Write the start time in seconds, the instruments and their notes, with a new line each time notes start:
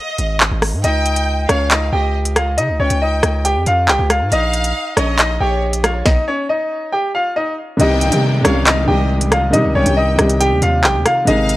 Already playing: violin section D#5
0.18 808-style bass G#1, closed hi-hat
0.40 clap
0.51 808-style bass G#1
0.62 cross-stick, open hi-hat
0.73 808-style bass G#2
0.84 808-style bass C#2, grand piano D#4 D#5, violin section G5, closed hi-hat
1.06 closed hi-hat
1.16 closed hi-hat
1.49 808-style bass C#2, grand piano C#4 C#5, violin section F5, cross-stick, closed hi-hat
1.71 grand piano D#4 D#5, clap, closed hi-hat
1.93 808-style bass C#2, grand piano G4 G5, violin section D#5
2.25 closed hi-hat
2.36 grand piano F4 F5, cross-stick, closed hi-hat
2.58 808-style bass C#3, grand piano D#4 D#5, closed hi-hat
2.69 808-style bass C#2
2.80 808-style bass C#2, grand piano C#4 C#5, violin section G5
2.90 808-style bass C#2, closed hi-hat
3.02 grand piano D#4 D#5
3.23 808-style bass C#2, cross-stick, closed hi-hat
3.45 grand piano G4 G5, closed hi-hat
3.56 808-style bass F2
3.66 808-style bass F2, grand piano F4 F5, closed hi-hat
3.88 808-style bass C2, grand piano G4 G5, clap
3.99 808-style bass C#2
4.10 grand piano F4 F5, cross-stick, closed hi-hat
4.21 808-style bass G#2
4.32 808-style bass A#1, grand piano D#4 D#5, violin section F5, closed hi-hat
4.53 closed hi-hat
4.64 closed hi-hat
4.97 808-style bass A#1, grand piano C#4 C#5, violin section D#5, cross-stick, closed hi-hat
5.19 grand piano D#4 D#5, clap, closed hi-hat
5.40 808-style bass A#1, grand piano G4 G5, violin section C#5
5.73 closed hi-hat
5.84 grand piano F4 F5, cross-stick, closed hi-hat
6.06 grand piano D#4 D#5, kick, snare
6.28 grand piano C#4 C#5
6.49 grand piano D#4 D#5
6.92 grand piano G4 G5
7.15 grand piano F4 F5
7.36 grand piano D#4 D#5
7.77 808-style bass C2, felt piano C3 D#3 G3, grand piano D#5, violin section G5, closed hi-hat, downlifter
7.81 grand piano D#4, felt piano D#4 G4
8.01 closed hi-hat
8.08 felt piano C3 D#3 G3, 808-style bass C3, closed hi-hat
8.13 felt piano D#4 G4
8.41 808-style bass C2, felt piano C3 D#3 G3, grand piano C#5, violin section F5, cross-stick, closed hi-hat
8.45 grand piano C#4, felt piano D#4 G4
8.66 grand piano D#4 D#5, clap, closed hi-hat
8.85 808-style bass C2, felt piano C3 D#3 G3, grand piano G4 G5, violin section D#5
8.89 felt piano D#4 G4
9.21 closed hi-hat
9.32 grand piano F4 F5, cross-stick, closed hi-hat
9.51 felt piano C3 D#3 G3, 808-style bass C3, grand piano D#4 D#5, closed hi-hat
9.55 felt piano D#4 G4
9.64 808-style bass C2
9.75 808-style bass C2, grand piano C#4 C#5, violin section G5
9.84 808-style bass C2, felt piano C3 D#3 G3, closed hi-hat
9.88 felt piano D#4 G4
9.97 grand piano D#4 D#5
10.16 808-style bass C2, felt piano C3 D#3 G3, cross-stick, closed hi-hat
10.20 felt piano D#4 G4
10.30 closed hi-hat
10.40 grand piano G4 G5, closed hi-hat
10.51 808-style bass D#2
10.62 808-style bass D#2, grand piano F4 F5, closed hi-hat
10.84 808-style bass A#1, grand piano G4 G5, clap
10.95 808-style bass D#2
11.06 grand piano F4 F5, cross-stick, closed hi-hat
11.25 808-style bass G#1, felt piano C3 D#3 G#3, grand piano D#4 D#5, violin section F5, closed hi-hat
11.29 felt piano D#4 G#4
11.49 closed hi-hat